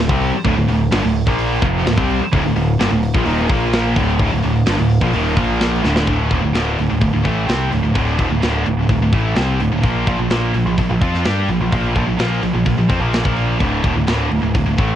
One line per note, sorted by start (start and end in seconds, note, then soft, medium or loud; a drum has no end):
0.00 0.10 D2 medium
0.00 0.10 A2 medium
0.09 0.31 C2 medium
0.09 0.33 C3 medium
0.09 0.33 G3 loud
0.09 0.33 C4 loud
0.09 kick loud
0.22 open hi-hat medium
0.33 muted picked electric bass stroke soft
0.33 muted distorted electric guitar stroke medium
0.45 0.56 D1 loud
0.45 0.56 D2 loud
0.45 0.56 A2 loud
0.45 kick loud
0.45 open hi-hat medium
0.57 0.68 D1 medium
0.57 0.68 D2 medium
0.57 0.69 A2 medium
0.68 0.90 D1 medium
0.68 0.87 D2 medium
0.68 0.88 A2 medium
0.68 open hi-hat medium
0.92 1.03 G1 loud
0.92 1.03 G2 medium
0.92 1.03 D3 loud
0.92 snare loud
0.92 open hi-hat medium
1.04 1.26 D1 medium
1.04 1.23 D2 medium
1.04 1.23 A2 medium
1.15 open hi-hat medium
1.27 1.60 A#1 medium
1.27 1.62 A#2 loud
1.27 1.62 F3 loud
1.27 1.62 A#3 loud
1.27 kick loud
1.39 open hi-hat medium
1.62 1.84 F1 medium
1.62 1.85 F2 medium
1.62 1.85 C3 loud
1.62 1.86 F3 loud
1.62 kick loud
1.62 open hi-hat medium
1.86 1.97 D1 medium
1.86 1.97 D2 medium
1.86 1.98 A2 medium
1.86 snare loud
1.86 open hi-hat medium
1.97 2.19 C2 loud
1.97 2.20 C3 medium
1.97 2.20 G3 medium
1.97 2.20 C4 medium
1.97 kick loud
2.09 open hi-hat medium
2.20 muted picked electric bass stroke soft
2.20 muted distorted electric guitar stroke medium
2.33 2.43 D1 loud
2.33 2.43 D2 loud
2.33 2.43 A2 loud
2.33 kick loud
2.33 open hi-hat medium
2.44 2.54 D1 medium
2.44 2.55 D2 medium
2.44 2.55 A2 medium
2.54 2.77 D1 medium
2.54 2.75 D2 medium
2.54 2.75 A2 medium
2.54 open hi-hat medium
2.79 2.90 G1 medium
2.79 2.90 G2 loud
2.79 2.90 D3 loud
2.79 snare loud
2.79 open hi-hat medium
2.90 3.12 D1 medium
2.90 3.10 D2 medium
2.90 3.10 A2 medium
3.03 open hi-hat medium
3.14 3.25 A#1 medium
3.14 3.25 A#2 loud
3.14 3.25 F3 loud
3.14 kick loud
3.26 3.47 D#1 medium
3.26 3.49 D#2 medium
3.26 3.49 A#2 medium
3.26 3.49 D#3 loud
3.26 open hi-hat medium
3.49 3.93 A#1 loud
3.49 3.96 A#2 medium
3.49 3.96 F3 medium
3.49 3.96 A#3 loud
3.49 kick loud
3.49 open hi-hat medium
3.73 snare loud
3.73 open hi-hat medium
3.96 4.18 D1 medium
3.96 4.18 D2 medium
3.96 4.19 A2 medium
3.96 4.19 D3 loud
3.96 kick loud
3.96 open hi-hat medium
4.19 4.30 D1 loud
4.19 4.31 D2 medium
4.19 4.31 A2 loud
4.19 kick loud
4.19 open hi-hat medium
4.32 4.42 D1 medium
4.32 4.42 D2 medium
4.32 4.43 A2 medium
4.42 4.65 D1 medium
4.42 4.62 D2 medium
4.42 4.62 A2 medium
4.42 open hi-hat medium
4.66 4.77 G1 loud
4.66 4.77 G2 medium
4.66 4.78 D3 medium
4.66 snare loud
4.66 open hi-hat medium
4.79 5.01 D1 medium
4.79 4.97 D2 medium
4.79 4.97 A2 medium
4.89 open hi-hat medium
5.01 5.12 A#1 loud
5.01 5.12 A#2 medium
5.01 5.13 F3 loud
5.01 kick medium
5.13 5.36 D#1 medium
5.13 5.36 D#2 medium
5.13 5.35 A#2 loud
5.13 5.36 D#3 loud
5.13 open hi-hat medium
5.36 5.80 A#1 medium
5.36 5.83 A#2 medium
5.36 5.83 F3 medium
5.36 5.83 A#3 medium
5.36 kick loud
5.36 open hi-hat medium
5.60 snare loud
5.60 open hi-hat medium
5.83 6.06 D1 medium
5.83 6.06 D2 medium
5.83 6.07 A2 medium
5.83 6.07 D3 medium
5.83 snare medium
5.96 snare loud
6.07 6.29 D1 loud
6.07 6.30 D2 medium
6.07 6.30 A2 medium
6.07 6.31 D3 medium
6.07 kick medium
6.07 open hi-hat medium
6.31 6.42 D#1 loud
6.31 6.42 D#2 medium
6.31 6.42 A#2 medium
6.31 kick medium
6.31 open hi-hat soft
6.43 6.54 D1 medium
6.43 6.54 D2 medium
6.43 6.54 A2 medium
6.54 6.76 D1 medium
6.54 6.77 D2 medium
6.54 6.78 A2 loud
6.54 6.78 D3 medium
6.54 snare loud
6.54 open hi-hat medium
6.79 6.90 D1 medium
6.79 6.89 D2 medium
6.79 6.89 A2 medium
6.79 open hi-hat medium
6.90 7.01 D1 medium
6.90 7.00 D2 medium
6.90 7.00 A2 medium
7.01 7.12 D1 medium
7.01 7.12 D2 medium
7.01 7.12 A2 medium
7.01 kick medium
7.01 open hi-hat medium
7.13 7.24 D1 medium
7.13 7.23 D2 medium
7.13 7.22 A2 medium
7.24 7.47 A1 medium
7.24 7.47 A2 medium
7.24 7.48 E3 medium
7.24 7.48 A3 medium
7.24 kick medium
7.24 open hi-hat medium
7.48 7.70 C2 medium
7.48 7.71 C3 medium
7.48 7.71 G3 medium
7.48 7.72 C4 medium
7.48 snare loud
7.48 open hi-hat medium
7.72 7.83 D1 medium
7.72 7.82 D2 medium
7.72 7.83 A2 medium
7.72 open hi-hat medium
7.83 7.95 D1 medium
7.83 7.94 D2 medium
7.83 7.95 A2 medium
7.95 8.17 D1 loud
7.95 8.18 D2 medium
7.95 8.19 A2 medium
7.95 8.19 D3 loud
7.95 kick loud
7.95 open hi-hat medium
8.19 8.30 D#1 loud
8.19 8.30 D#2 medium
8.19 8.31 A#2 medium
8.19 kick medium
8.19 open hi-hat medium
8.30 8.42 D1 medium
8.30 8.42 D2 medium
8.30 8.43 A2 medium
8.42 8.65 D1 medium
8.42 8.66 D2 medium
8.42 8.66 A2 medium
8.42 8.66 D3 medium
8.42 snare loud
8.42 open hi-hat medium
8.66 8.76 D1 medium
8.66 8.78 D2 soft
8.66 8.79 A2 medium
8.66 open hi-hat medium
8.77 8.89 D1 medium
8.77 8.89 D2 medium
8.77 8.89 A2 medium
8.89 9.00 D1 medium
8.89 9.01 D2 medium
8.89 9.02 A2 medium
8.89 kick medium
8.89 open hi-hat medium
9.01 9.12 D1 medium
9.01 9.14 D2 medium
9.01 9.13 A2 medium
9.13 9.35 A1 medium
9.13 9.37 A2 medium
9.13 9.37 E3 medium
9.13 9.37 A3 medium
9.13 kick loud
9.13 open hi-hat medium
9.36 9.59 C2 medium
9.36 9.60 C3 medium
9.36 9.60 G3 medium
9.36 9.60 C4 medium
9.36 snare loud
9.36 open hi-hat medium
9.60 9.71 D1 medium
9.60 9.71 D2 medium
9.60 9.71 A2 medium
9.60 open hi-hat medium
9.71 9.83 D1 medium
9.71 9.84 D2 medium
9.71 9.84 A2 medium
9.83 10.06 A#1 medium
9.83 10.07 A#2 medium
9.83 10.07 F3 medium
9.83 10.07 A#3 loud
9.83 kick loud
9.83 open hi-hat medium
10.07 10.18 A#1 medium
10.07 10.19 A#2 medium
10.07 10.19 F3 medium
10.07 kick loud
10.07 open hi-hat soft
10.19 10.29 A#1 medium
10.19 10.29 A#2 medium
10.19 10.30 F3 medium
10.30 10.52 A#1 medium
10.30 10.53 A#2 medium
10.30 10.54 F3 medium
10.30 10.54 A#3 medium
10.30 snare loud
10.30 open hi-hat medium
10.53 10.65 A#1 medium
10.53 10.66 A#2 medium
10.53 10.66 F3 medium
10.53 open hi-hat medium
10.65 10.77 A#1 medium
10.65 10.77 A#2 medium
10.65 10.78 F3 medium
10.78 10.89 A#1 medium
10.78 10.89 A#2 medium
10.78 10.89 F3 medium
10.78 kick medium
10.78 open hi-hat medium
10.90 11.01 A#1 medium
10.90 11.02 A#2 medium
10.90 11.01 F3 medium
11.01 11.24 F2 medium
11.01 11.25 F3 medium
11.01 11.25 C4 medium
11.01 11.25 F4 medium
11.01 kick loud
11.01 open hi-hat soft
11.14 snare soft
11.24 11.48 G2 medium
11.24 11.48 G3 medium
11.24 11.48 D4 medium
11.24 11.49 G4 loud
11.24 snare loud
11.24 open hi-hat medium
11.48 11.59 A#1 medium
11.48 11.60 A#2 medium
11.48 11.60 F3 medium
11.48 open hi-hat medium
11.60 11.71 A#1 medium
11.60 11.71 A#2 medium
11.60 11.72 F3 medium
11.72 11.94 A#1 loud
11.72 11.95 A#2 medium
11.72 11.95 F3 medium
11.72 11.96 A#3 medium
11.72 kick medium
11.72 open hi-hat medium
11.96 12.05 A#1 loud
11.96 12.07 A#2 medium
11.96 12.07 F3 loud
11.96 kick medium
11.96 open hi-hat soft
12.06 12.18 A#1 medium
12.06 12.18 A#2 medium
12.06 12.18 F3 medium
12.19 12.41 A#1 medium
12.19 12.42 A#2 medium
12.19 12.42 F3 medium
12.19 12.43 A#3 loud
12.19 snare loud
12.19 open hi-hat medium
12.42 12.54 A#1 medium
12.42 12.53 A#2 medium
12.42 12.54 F3 medium
12.42 open hi-hat medium
12.54 12.66 A#1 medium
12.54 12.65 A#2 medium
12.54 12.66 F3 medium
12.66 12.77 A#1 medium
12.66 12.77 A#2 medium
12.66 12.77 F3 medium
12.66 kick medium
12.66 open hi-hat medium
12.77 12.89 A#1 medium
12.77 12.90 A#2 medium
12.77 12.88 F3 medium
12.89 12.99 F2 medium
12.89 13.00 F3 medium
12.89 13.01 C4 loud
12.89 kick loud
12.89 open hi-hat soft
13.00 13.23 A#1 medium
13.00 13.23 A#2 medium
13.00 13.23 F3 medium
13.00 13.24 A#3 medium
13.13 snare medium
13.13 open hi-hat medium
13.24 13.58 A#1 medium
13.24 13.59 A#2 medium
13.24 13.59 F3 medium
13.24 13.60 A#3 medium
13.24 kick medium
13.36 open hi-hat medium
13.60 13.82 D1 loud
13.60 13.83 D2 medium
13.60 13.84 A2 medium
13.60 13.84 D3 loud
13.60 kick loud
13.60 open hi-hat medium
13.84 13.95 D#1 medium
13.84 13.95 D#2 medium
13.84 13.95 A#2 loud
13.84 kick loud
13.84 open hi-hat soft
13.96 14.07 D1 medium
13.96 14.06 D2 medium
13.96 14.06 A2 medium
14.07 14.30 D1 medium
14.07 14.30 D2 medium
14.07 14.31 A2 medium
14.07 14.31 D3 medium
14.07 snare loud
14.07 open hi-hat medium
14.31 14.42 D1 medium
14.31 14.42 D2 medium
14.31 14.42 A2 medium
14.31 open hi-hat medium
14.42 14.54 D1 medium
14.42 14.54 D2 medium
14.42 14.54 A2 medium
14.54 14.66 D1 medium
14.54 14.65 D2 medium
14.54 14.65 A2 medium
14.54 kick medium
14.54 open hi-hat medium
14.66 14.77 D1 medium
14.66 14.77 D2 medium
14.66 14.76 A2 medium
14.78 14.96 A1 medium
14.78 14.96 A2 medium
14.78 14.96 E3 medium
14.78 14.96 A3 medium
14.78 kick loud
14.78 open hi-hat medium